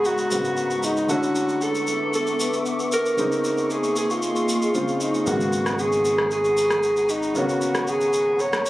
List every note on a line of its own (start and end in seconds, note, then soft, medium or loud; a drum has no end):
0.00 0.28 G#2 medium
0.00 0.28 C#3 medium
0.00 1.05 G#3 medium
0.00 0.29 A#3 medium
0.00 0.29 B3 medium
0.00 0.30 F#4 medium
0.00 1.05 F#5 medium
0.00 1.05 A#5 medium
0.00 1.05 B5 medium
0.00 8.70 C#6 medium
0.05 0.86 F#4 loud
0.05 shaker medium
0.18 shaker medium
0.31 1.09 G#2 soft
0.31 1.09 C#3 soft
0.31 1.09 A#3 soft
0.31 1.10 B3 soft
0.31 1.10 F#4 medium
0.31 shaker medium
0.44 shaker medium
0.57 shaker medium
0.71 shaker soft
0.83 1.10 D#4 medium
0.83 shaker medium
0.97 shaker soft
1.08 3.13 D3 medium
1.08 3.14 A3 medium
1.08 3.16 B3 medium
1.08 3.14 C#4 medium
1.08 3.15 E4 medium
1.08 1.64 F#4 loud
1.08 3.16 A4 medium
1.08 3.16 E5 medium
1.08 3.16 D6 medium
1.08 shaker medium
1.23 shaker soft
1.35 shaker medium
1.49 shaker soft
1.61 2.14 A4 loud
1.61 shaker medium
1.75 shaker soft
1.87 shaker medium
2.13 2.62 A4 loud
2.13 shaker medium
2.27 shaker medium
2.40 shaker medium
2.53 shaker medium
2.66 shaker medium
2.79 shaker soft
2.92 3.73 A#4 medium
2.92 shaker medium
3.06 shaker soft
3.17 4.71 C#3 medium
3.17 4.71 G#3 medium
3.17 5.24 A#3 medium
3.17 4.72 C4 medium
3.17 4.72 D#4 medium
3.17 5.24 G#4 medium
3.17 5.24 D#5 medium
3.17 5.24 C6 medium
3.17 shaker medium
3.32 shaker soft
3.44 shaker medium
3.58 shaker soft
3.70 3.97 G#4 medium
3.70 shaker medium
3.84 shaker soft
3.96 4.13 G#4 medium
3.96 shaker medium
4.10 5.04 F4 medium
4.10 shaker medium
4.22 shaker medium
4.36 shaker soft
4.49 shaker medium
4.62 shaker medium
4.74 5.24 C#3 medium
4.74 5.27 G#3 medium
4.74 5.27 C4 medium
4.74 5.27 F4 medium
4.74 shaker medium
4.88 shaker soft
5.01 5.27 D#4 medium
5.01 shaker medium
5.14 shaker soft
5.25 8.70 G#1 medium
5.25 7.31 C#3 medium
5.25 7.31 A#3 medium
5.25 7.32 B3 medium
5.25 5.82 F#4 loud
5.25 7.32 F#4 medium
5.25 8.70 F#5 medium
5.25 8.70 A#5 medium
5.25 8.70 B5 medium
5.25 shaker medium
5.41 shaker soft
5.53 shaker medium
5.66 cross-stick medium
5.66 shaker soft
5.79 6.32 G#4 medium
5.79 shaker medium
5.92 shaker soft
6.05 shaker medium
6.18 cross-stick medium
6.31 7.12 G#4 loud
6.31 shaker medium
6.44 shaker medium
6.57 shaker medium
6.70 cross-stick medium
6.70 shaker medium
6.83 shaker medium
6.97 shaker soft
7.09 7.38 D#4 medium
7.09 shaker medium
7.23 shaker soft
7.34 8.70 C#3 medium
7.34 8.70 A#3 medium
7.34 8.70 B3 medium
7.34 8.70 C#4 medium
7.34 7.91 F#4 loud
7.34 shaker medium
7.49 shaker soft
7.61 shaker medium
7.75 cross-stick medium
7.75 shaker soft
7.87 8.42 G#4 medium
7.87 shaker medium
8.01 shaker medium
8.13 shaker medium
8.39 8.70 C#5 loud
8.39 shaker medium
8.53 cross-stick loud
8.53 shaker soft
8.66 shaker medium